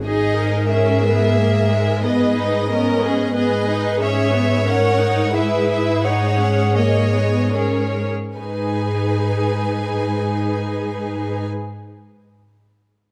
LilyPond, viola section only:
\new Staff \with { instrumentName = "Viola section" } { \time 3/4 \key gis \minor \tempo 4 = 84 << { gis'8 ais'4. ais'4 | gis'4 b4 b'4 | gis'4 ais'4 gis'4 | gis'2 ais'8 r8 |
gis'2.~ | gis'2. | } \\ { dis'4 cis'8 b8 ais8 gis8 | b8 dis'8 cis'4 b8 dis'8 | cis'8 b8 cis'8 dis'8 e'4 | dis'8 cis'8 ais8 b8 cis'8 r8 |
dis'2.~ | dis'2. | } >> }